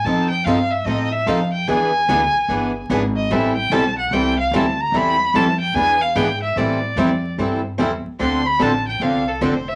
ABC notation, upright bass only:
X:1
M:4/4
L:1/8
Q:"Swing" 1/4=147
K:Am
V:1 name="Upright bass" clef=bass
F,,2 G,,2 A,,2 F,,2 | E,,2 D,, z G,,,2 ^G,,,2 | A,,,2 B,,,2 C,,2 D,,2 | E,,2 F,,2 E,,2 ^G,,2 |
A,,2 F,,2 G,,2 E,, z | D,,2 A,,,2 C,,2 F,,,2 |]